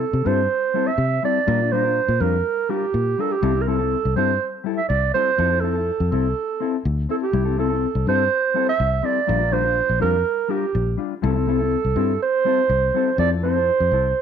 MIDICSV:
0, 0, Header, 1, 5, 480
1, 0, Start_track
1, 0, Tempo, 487805
1, 1452, Time_signature, 4, 2, 24, 8
1, 13991, End_track
2, 0, Start_track
2, 0, Title_t, "Clarinet"
2, 0, Program_c, 0, 71
2, 0, Note_on_c, 0, 69, 85
2, 258, Note_on_c, 0, 72, 93
2, 273, Note_off_c, 0, 69, 0
2, 858, Note_on_c, 0, 76, 102
2, 873, Note_off_c, 0, 72, 0
2, 1215, Note_off_c, 0, 76, 0
2, 1229, Note_on_c, 0, 74, 97
2, 1692, Note_on_c, 0, 72, 93
2, 1707, Note_off_c, 0, 74, 0
2, 2172, Note_on_c, 0, 70, 87
2, 2187, Note_off_c, 0, 72, 0
2, 2657, Note_on_c, 0, 67, 95
2, 2671, Note_off_c, 0, 70, 0
2, 3148, Note_on_c, 0, 69, 83
2, 3163, Note_off_c, 0, 67, 0
2, 3263, Note_on_c, 0, 67, 89
2, 3278, Note_off_c, 0, 69, 0
2, 3556, Note_on_c, 0, 70, 59
2, 3570, Note_off_c, 0, 67, 0
2, 3619, Note_on_c, 0, 69, 93
2, 3634, Note_off_c, 0, 70, 0
2, 4090, Note_off_c, 0, 69, 0
2, 4096, Note_on_c, 0, 72, 75
2, 4409, Note_off_c, 0, 72, 0
2, 4687, Note_on_c, 0, 76, 88
2, 4803, Note_off_c, 0, 76, 0
2, 4808, Note_on_c, 0, 74, 89
2, 5036, Note_off_c, 0, 74, 0
2, 5059, Note_on_c, 0, 72, 101
2, 5514, Note_on_c, 0, 69, 90
2, 5529, Note_off_c, 0, 72, 0
2, 6006, Note_off_c, 0, 69, 0
2, 6021, Note_on_c, 0, 69, 79
2, 6700, Note_off_c, 0, 69, 0
2, 6994, Note_on_c, 0, 69, 78
2, 7045, Note_off_c, 0, 69, 0
2, 7112, Note_on_c, 0, 67, 81
2, 7439, Note_off_c, 0, 67, 0
2, 7470, Note_on_c, 0, 69, 77
2, 7911, Note_off_c, 0, 69, 0
2, 7956, Note_on_c, 0, 72, 91
2, 8508, Note_off_c, 0, 72, 0
2, 8551, Note_on_c, 0, 76, 100
2, 8905, Note_on_c, 0, 74, 96
2, 8919, Note_off_c, 0, 76, 0
2, 9374, Note_on_c, 0, 72, 95
2, 9389, Note_off_c, 0, 74, 0
2, 9848, Note_off_c, 0, 72, 0
2, 9854, Note_on_c, 0, 70, 92
2, 10335, Note_on_c, 0, 67, 84
2, 10350, Note_off_c, 0, 70, 0
2, 10815, Note_off_c, 0, 67, 0
2, 11073, Note_on_c, 0, 69, 89
2, 11984, Note_off_c, 0, 69, 0
2, 12027, Note_on_c, 0, 72, 104
2, 12940, Note_off_c, 0, 72, 0
2, 12978, Note_on_c, 0, 74, 105
2, 13085, Note_off_c, 0, 74, 0
2, 13216, Note_on_c, 0, 72, 99
2, 13991, Note_off_c, 0, 72, 0
2, 13991, End_track
3, 0, Start_track
3, 0, Title_t, "Clean electric guitar"
3, 0, Program_c, 1, 27
3, 236, Note_on_c, 1, 55, 57
3, 246, Note_on_c, 1, 60, 59
3, 257, Note_on_c, 1, 64, 62
3, 263, Note_on_c, 1, 69, 68
3, 388, Note_off_c, 1, 55, 0
3, 393, Note_off_c, 1, 60, 0
3, 399, Note_off_c, 1, 64, 0
3, 402, Note_off_c, 1, 69, 0
3, 725, Note_on_c, 1, 55, 61
3, 736, Note_on_c, 1, 60, 53
3, 739, Note_on_c, 1, 64, 68
3, 747, Note_on_c, 1, 69, 67
3, 873, Note_off_c, 1, 55, 0
3, 879, Note_off_c, 1, 60, 0
3, 881, Note_off_c, 1, 64, 0
3, 885, Note_off_c, 1, 69, 0
3, 1206, Note_on_c, 1, 55, 49
3, 1215, Note_on_c, 1, 60, 50
3, 1222, Note_on_c, 1, 64, 59
3, 1225, Note_on_c, 1, 69, 60
3, 1355, Note_off_c, 1, 55, 0
3, 1359, Note_off_c, 1, 60, 0
3, 1363, Note_off_c, 1, 64, 0
3, 1364, Note_off_c, 1, 69, 0
3, 1444, Note_on_c, 1, 55, 69
3, 1445, Note_on_c, 1, 62, 72
3, 1449, Note_on_c, 1, 65, 73
3, 1455, Note_on_c, 1, 70, 80
3, 1570, Note_off_c, 1, 55, 0
3, 1570, Note_off_c, 1, 62, 0
3, 1573, Note_off_c, 1, 65, 0
3, 1576, Note_off_c, 1, 70, 0
3, 1592, Note_on_c, 1, 65, 49
3, 1601, Note_on_c, 1, 62, 44
3, 1693, Note_off_c, 1, 62, 0
3, 1694, Note_on_c, 1, 55, 55
3, 1699, Note_off_c, 1, 65, 0
3, 1705, Note_on_c, 1, 62, 64
3, 1711, Note_on_c, 1, 65, 58
3, 1718, Note_on_c, 1, 70, 66
3, 1798, Note_off_c, 1, 70, 0
3, 1810, Note_on_c, 1, 70, 54
3, 1813, Note_off_c, 1, 65, 0
3, 1815, Note_off_c, 1, 55, 0
3, 1821, Note_off_c, 1, 62, 0
3, 1824, Note_on_c, 1, 65, 44
3, 1834, Note_on_c, 1, 62, 41
3, 1955, Note_off_c, 1, 70, 0
3, 1963, Note_off_c, 1, 65, 0
3, 1967, Note_off_c, 1, 62, 0
3, 2171, Note_on_c, 1, 55, 61
3, 2179, Note_on_c, 1, 62, 60
3, 2186, Note_on_c, 1, 65, 61
3, 2190, Note_on_c, 1, 70, 68
3, 2318, Note_off_c, 1, 55, 0
3, 2322, Note_off_c, 1, 62, 0
3, 2325, Note_off_c, 1, 65, 0
3, 2328, Note_off_c, 1, 70, 0
3, 2645, Note_on_c, 1, 55, 61
3, 2653, Note_on_c, 1, 62, 62
3, 2658, Note_on_c, 1, 65, 63
3, 2662, Note_on_c, 1, 70, 57
3, 2795, Note_off_c, 1, 55, 0
3, 2800, Note_off_c, 1, 62, 0
3, 2802, Note_off_c, 1, 65, 0
3, 2804, Note_off_c, 1, 70, 0
3, 3129, Note_on_c, 1, 55, 52
3, 3142, Note_on_c, 1, 62, 58
3, 3142, Note_on_c, 1, 65, 50
3, 3151, Note_on_c, 1, 70, 57
3, 3278, Note_off_c, 1, 55, 0
3, 3284, Note_off_c, 1, 62, 0
3, 3284, Note_off_c, 1, 65, 0
3, 3289, Note_off_c, 1, 70, 0
3, 3363, Note_on_c, 1, 55, 67
3, 3371, Note_on_c, 1, 60, 76
3, 3375, Note_on_c, 1, 64, 72
3, 3381, Note_on_c, 1, 69, 73
3, 3474, Note_off_c, 1, 69, 0
3, 3485, Note_off_c, 1, 64, 0
3, 3491, Note_off_c, 1, 55, 0
3, 3495, Note_off_c, 1, 60, 0
3, 3497, Note_on_c, 1, 64, 50
3, 3505, Note_on_c, 1, 60, 40
3, 3604, Note_off_c, 1, 60, 0
3, 3607, Note_on_c, 1, 55, 65
3, 3609, Note_off_c, 1, 64, 0
3, 3616, Note_on_c, 1, 60, 62
3, 3621, Note_on_c, 1, 64, 68
3, 3629, Note_on_c, 1, 69, 64
3, 3716, Note_off_c, 1, 69, 0
3, 3728, Note_on_c, 1, 69, 53
3, 3733, Note_off_c, 1, 55, 0
3, 3734, Note_off_c, 1, 64, 0
3, 3738, Note_off_c, 1, 60, 0
3, 3746, Note_on_c, 1, 64, 45
3, 3756, Note_on_c, 1, 60, 39
3, 3876, Note_off_c, 1, 69, 0
3, 3885, Note_off_c, 1, 64, 0
3, 3890, Note_off_c, 1, 60, 0
3, 4093, Note_on_c, 1, 55, 60
3, 4098, Note_on_c, 1, 60, 54
3, 4109, Note_on_c, 1, 64, 56
3, 4112, Note_on_c, 1, 69, 67
3, 4240, Note_off_c, 1, 55, 0
3, 4243, Note_off_c, 1, 60, 0
3, 4248, Note_off_c, 1, 64, 0
3, 4250, Note_off_c, 1, 69, 0
3, 4563, Note_on_c, 1, 55, 61
3, 4584, Note_on_c, 1, 64, 69
3, 4590, Note_on_c, 1, 69, 66
3, 4716, Note_off_c, 1, 55, 0
3, 4726, Note_off_c, 1, 64, 0
3, 4729, Note_off_c, 1, 69, 0
3, 5059, Note_on_c, 1, 55, 47
3, 5065, Note_on_c, 1, 60, 52
3, 5074, Note_on_c, 1, 64, 59
3, 5080, Note_on_c, 1, 69, 60
3, 5204, Note_off_c, 1, 55, 0
3, 5206, Note_off_c, 1, 60, 0
3, 5211, Note_off_c, 1, 64, 0
3, 5214, Note_off_c, 1, 69, 0
3, 5291, Note_on_c, 1, 60, 76
3, 5300, Note_on_c, 1, 64, 68
3, 5308, Note_on_c, 1, 69, 81
3, 5403, Note_off_c, 1, 69, 0
3, 5415, Note_on_c, 1, 69, 59
3, 5416, Note_off_c, 1, 60, 0
3, 5420, Note_off_c, 1, 64, 0
3, 5434, Note_on_c, 1, 64, 46
3, 5535, Note_off_c, 1, 69, 0
3, 5535, Note_on_c, 1, 60, 52
3, 5536, Note_off_c, 1, 64, 0
3, 5548, Note_on_c, 1, 64, 54
3, 5555, Note_on_c, 1, 69, 61
3, 5647, Note_off_c, 1, 69, 0
3, 5658, Note_off_c, 1, 60, 0
3, 5659, Note_on_c, 1, 69, 58
3, 5664, Note_off_c, 1, 64, 0
3, 5684, Note_on_c, 1, 64, 37
3, 5802, Note_off_c, 1, 69, 0
3, 5815, Note_off_c, 1, 64, 0
3, 6019, Note_on_c, 1, 60, 60
3, 6033, Note_on_c, 1, 64, 62
3, 6042, Note_on_c, 1, 69, 61
3, 6164, Note_off_c, 1, 60, 0
3, 6170, Note_off_c, 1, 64, 0
3, 6175, Note_off_c, 1, 69, 0
3, 6496, Note_on_c, 1, 60, 63
3, 6510, Note_on_c, 1, 64, 63
3, 6517, Note_on_c, 1, 69, 64
3, 6642, Note_off_c, 1, 60, 0
3, 6649, Note_off_c, 1, 64, 0
3, 6653, Note_off_c, 1, 69, 0
3, 6977, Note_on_c, 1, 60, 47
3, 6989, Note_on_c, 1, 64, 55
3, 7001, Note_on_c, 1, 69, 55
3, 7123, Note_off_c, 1, 60, 0
3, 7129, Note_off_c, 1, 64, 0
3, 7135, Note_off_c, 1, 69, 0
3, 7211, Note_on_c, 1, 55, 64
3, 7222, Note_on_c, 1, 64, 70
3, 7329, Note_off_c, 1, 64, 0
3, 7332, Note_on_c, 1, 69, 59
3, 7336, Note_off_c, 1, 55, 0
3, 7341, Note_on_c, 1, 64, 43
3, 7357, Note_on_c, 1, 60, 41
3, 7446, Note_off_c, 1, 60, 0
3, 7453, Note_off_c, 1, 64, 0
3, 7454, Note_off_c, 1, 69, 0
3, 7457, Note_on_c, 1, 60, 60
3, 7465, Note_on_c, 1, 64, 60
3, 7472, Note_on_c, 1, 69, 62
3, 7565, Note_off_c, 1, 69, 0
3, 7575, Note_off_c, 1, 64, 0
3, 7577, Note_on_c, 1, 69, 51
3, 7579, Note_off_c, 1, 60, 0
3, 7587, Note_on_c, 1, 64, 49
3, 7599, Note_on_c, 1, 60, 36
3, 7721, Note_off_c, 1, 69, 0
3, 7726, Note_off_c, 1, 64, 0
3, 7732, Note_off_c, 1, 60, 0
3, 7946, Note_on_c, 1, 60, 64
3, 7951, Note_on_c, 1, 64, 58
3, 7961, Note_on_c, 1, 69, 68
3, 8087, Note_off_c, 1, 60, 0
3, 8090, Note_off_c, 1, 64, 0
3, 8094, Note_off_c, 1, 69, 0
3, 8402, Note_on_c, 1, 55, 61
3, 8413, Note_on_c, 1, 60, 64
3, 8420, Note_on_c, 1, 64, 55
3, 8425, Note_on_c, 1, 69, 65
3, 8555, Note_off_c, 1, 55, 0
3, 8560, Note_off_c, 1, 60, 0
3, 8564, Note_off_c, 1, 64, 0
3, 8566, Note_off_c, 1, 69, 0
3, 8881, Note_on_c, 1, 55, 50
3, 8886, Note_on_c, 1, 60, 58
3, 8899, Note_on_c, 1, 64, 54
3, 8905, Note_on_c, 1, 69, 58
3, 9034, Note_off_c, 1, 55, 0
3, 9037, Note_off_c, 1, 60, 0
3, 9043, Note_off_c, 1, 64, 0
3, 9046, Note_off_c, 1, 69, 0
3, 9121, Note_on_c, 1, 55, 70
3, 9127, Note_on_c, 1, 62, 65
3, 9132, Note_on_c, 1, 65, 71
3, 9135, Note_on_c, 1, 70, 78
3, 9225, Note_off_c, 1, 70, 0
3, 9237, Note_on_c, 1, 70, 52
3, 9242, Note_off_c, 1, 65, 0
3, 9250, Note_off_c, 1, 55, 0
3, 9253, Note_off_c, 1, 62, 0
3, 9254, Note_on_c, 1, 65, 50
3, 9359, Note_on_c, 1, 55, 61
3, 9364, Note_off_c, 1, 65, 0
3, 9366, Note_off_c, 1, 70, 0
3, 9369, Note_on_c, 1, 62, 66
3, 9376, Note_on_c, 1, 65, 69
3, 9383, Note_on_c, 1, 70, 67
3, 9478, Note_off_c, 1, 65, 0
3, 9489, Note_off_c, 1, 55, 0
3, 9489, Note_on_c, 1, 65, 51
3, 9494, Note_off_c, 1, 62, 0
3, 9501, Note_off_c, 1, 70, 0
3, 9504, Note_on_c, 1, 62, 47
3, 9636, Note_off_c, 1, 65, 0
3, 9644, Note_off_c, 1, 62, 0
3, 9834, Note_on_c, 1, 55, 58
3, 9838, Note_on_c, 1, 62, 58
3, 9849, Note_on_c, 1, 65, 63
3, 9852, Note_on_c, 1, 70, 57
3, 9990, Note_off_c, 1, 55, 0
3, 9992, Note_off_c, 1, 62, 0
3, 9998, Note_off_c, 1, 65, 0
3, 9999, Note_off_c, 1, 70, 0
3, 10313, Note_on_c, 1, 55, 56
3, 10324, Note_on_c, 1, 62, 62
3, 10332, Note_on_c, 1, 65, 69
3, 10335, Note_on_c, 1, 70, 66
3, 10470, Note_off_c, 1, 55, 0
3, 10475, Note_off_c, 1, 62, 0
3, 10479, Note_off_c, 1, 65, 0
3, 10481, Note_off_c, 1, 70, 0
3, 10797, Note_on_c, 1, 55, 53
3, 10802, Note_on_c, 1, 62, 56
3, 10811, Note_on_c, 1, 65, 57
3, 10951, Note_off_c, 1, 55, 0
3, 10954, Note_off_c, 1, 62, 0
3, 10958, Note_off_c, 1, 65, 0
3, 11042, Note_on_c, 1, 55, 68
3, 11050, Note_on_c, 1, 60, 64
3, 11050, Note_on_c, 1, 64, 82
3, 11054, Note_on_c, 1, 69, 79
3, 11143, Note_off_c, 1, 69, 0
3, 11155, Note_on_c, 1, 69, 47
3, 11158, Note_off_c, 1, 64, 0
3, 11167, Note_off_c, 1, 60, 0
3, 11169, Note_on_c, 1, 64, 47
3, 11170, Note_off_c, 1, 55, 0
3, 11179, Note_on_c, 1, 60, 44
3, 11284, Note_off_c, 1, 69, 0
3, 11285, Note_off_c, 1, 60, 0
3, 11285, Note_on_c, 1, 55, 59
3, 11291, Note_off_c, 1, 64, 0
3, 11296, Note_on_c, 1, 60, 56
3, 11305, Note_on_c, 1, 64, 66
3, 11310, Note_on_c, 1, 69, 64
3, 11393, Note_off_c, 1, 69, 0
3, 11405, Note_off_c, 1, 64, 0
3, 11405, Note_on_c, 1, 69, 58
3, 11411, Note_off_c, 1, 55, 0
3, 11417, Note_off_c, 1, 60, 0
3, 11417, Note_on_c, 1, 64, 54
3, 11430, Note_on_c, 1, 60, 40
3, 11553, Note_off_c, 1, 69, 0
3, 11559, Note_off_c, 1, 64, 0
3, 11566, Note_off_c, 1, 60, 0
3, 11772, Note_on_c, 1, 60, 68
3, 11777, Note_on_c, 1, 64, 70
3, 11787, Note_on_c, 1, 69, 72
3, 11918, Note_off_c, 1, 60, 0
3, 11921, Note_off_c, 1, 64, 0
3, 11926, Note_off_c, 1, 69, 0
3, 12245, Note_on_c, 1, 55, 55
3, 12253, Note_on_c, 1, 60, 66
3, 12262, Note_on_c, 1, 64, 65
3, 12264, Note_on_c, 1, 69, 72
3, 12395, Note_off_c, 1, 55, 0
3, 12398, Note_off_c, 1, 60, 0
3, 12403, Note_off_c, 1, 64, 0
3, 12404, Note_off_c, 1, 69, 0
3, 12733, Note_on_c, 1, 55, 63
3, 12738, Note_on_c, 1, 60, 67
3, 12752, Note_on_c, 1, 64, 64
3, 12755, Note_on_c, 1, 69, 71
3, 12878, Note_off_c, 1, 55, 0
3, 12880, Note_off_c, 1, 60, 0
3, 12887, Note_off_c, 1, 64, 0
3, 12889, Note_off_c, 1, 69, 0
3, 12975, Note_on_c, 1, 60, 67
3, 12979, Note_on_c, 1, 64, 72
3, 12991, Note_on_c, 1, 69, 73
3, 13088, Note_off_c, 1, 69, 0
3, 13095, Note_off_c, 1, 60, 0
3, 13097, Note_off_c, 1, 64, 0
3, 13100, Note_on_c, 1, 69, 50
3, 13126, Note_on_c, 1, 64, 39
3, 13215, Note_off_c, 1, 69, 0
3, 13217, Note_on_c, 1, 60, 64
3, 13219, Note_off_c, 1, 64, 0
3, 13231, Note_on_c, 1, 64, 60
3, 13240, Note_on_c, 1, 69, 66
3, 13326, Note_off_c, 1, 69, 0
3, 13336, Note_off_c, 1, 60, 0
3, 13338, Note_on_c, 1, 69, 53
3, 13343, Note_off_c, 1, 64, 0
3, 13361, Note_on_c, 1, 64, 45
3, 13479, Note_off_c, 1, 69, 0
3, 13490, Note_off_c, 1, 64, 0
3, 13707, Note_on_c, 1, 64, 58
3, 13712, Note_on_c, 1, 69, 62
3, 13845, Note_off_c, 1, 64, 0
3, 13847, Note_off_c, 1, 69, 0
3, 13991, End_track
4, 0, Start_track
4, 0, Title_t, "Fingered electric bass"
4, 0, Program_c, 2, 33
4, 131, Note_on_c, 2, 48, 79
4, 230, Note_off_c, 2, 48, 0
4, 254, Note_on_c, 2, 43, 81
4, 454, Note_off_c, 2, 43, 0
4, 962, Note_on_c, 2, 48, 81
4, 1168, Note_off_c, 2, 48, 0
4, 1454, Note_on_c, 2, 46, 103
4, 1960, Note_off_c, 2, 46, 0
4, 2050, Note_on_c, 2, 46, 78
4, 2152, Note_off_c, 2, 46, 0
4, 2168, Note_on_c, 2, 41, 75
4, 2372, Note_off_c, 2, 41, 0
4, 2892, Note_on_c, 2, 46, 83
4, 3095, Note_off_c, 2, 46, 0
4, 3372, Note_on_c, 2, 36, 99
4, 3879, Note_off_c, 2, 36, 0
4, 3987, Note_on_c, 2, 36, 80
4, 4083, Note_off_c, 2, 36, 0
4, 4103, Note_on_c, 2, 43, 81
4, 4302, Note_off_c, 2, 43, 0
4, 4819, Note_on_c, 2, 36, 90
4, 5020, Note_off_c, 2, 36, 0
4, 5300, Note_on_c, 2, 41, 100
4, 5804, Note_off_c, 2, 41, 0
4, 5905, Note_on_c, 2, 41, 79
4, 6002, Note_off_c, 2, 41, 0
4, 6023, Note_on_c, 2, 36, 77
4, 6222, Note_off_c, 2, 36, 0
4, 6743, Note_on_c, 2, 38, 88
4, 6943, Note_off_c, 2, 38, 0
4, 7215, Note_on_c, 2, 36, 97
4, 7721, Note_off_c, 2, 36, 0
4, 7824, Note_on_c, 2, 36, 78
4, 7921, Note_off_c, 2, 36, 0
4, 7940, Note_on_c, 2, 43, 82
4, 8140, Note_off_c, 2, 43, 0
4, 8657, Note_on_c, 2, 36, 91
4, 8858, Note_off_c, 2, 36, 0
4, 9143, Note_on_c, 2, 34, 100
4, 9645, Note_off_c, 2, 34, 0
4, 9736, Note_on_c, 2, 34, 73
4, 9836, Note_off_c, 2, 34, 0
4, 9862, Note_on_c, 2, 41, 79
4, 10061, Note_off_c, 2, 41, 0
4, 10576, Note_on_c, 2, 34, 88
4, 10777, Note_off_c, 2, 34, 0
4, 11056, Note_on_c, 2, 36, 111
4, 11560, Note_off_c, 2, 36, 0
4, 11657, Note_on_c, 2, 36, 73
4, 11756, Note_off_c, 2, 36, 0
4, 11767, Note_on_c, 2, 43, 87
4, 11971, Note_off_c, 2, 43, 0
4, 12491, Note_on_c, 2, 36, 90
4, 12693, Note_off_c, 2, 36, 0
4, 12970, Note_on_c, 2, 41, 103
4, 13476, Note_off_c, 2, 41, 0
4, 13581, Note_on_c, 2, 41, 73
4, 13678, Note_off_c, 2, 41, 0
4, 13693, Note_on_c, 2, 36, 76
4, 13894, Note_off_c, 2, 36, 0
4, 13991, End_track
5, 0, Start_track
5, 0, Title_t, "Muted clean electric guitar strokes"
5, 3486, Note_on_c, 9, 29, 52
5, 3584, Note_off_c, 9, 29, 0
5, 4572, Note_on_c, 9, 29, 62
5, 4671, Note_off_c, 9, 29, 0
5, 7218, Note_on_c, 9, 29, 71
5, 7316, Note_off_c, 9, 29, 0
5, 7450, Note_on_c, 9, 29, 53
5, 7548, Note_off_c, 9, 29, 0
5, 13991, End_track
0, 0, End_of_file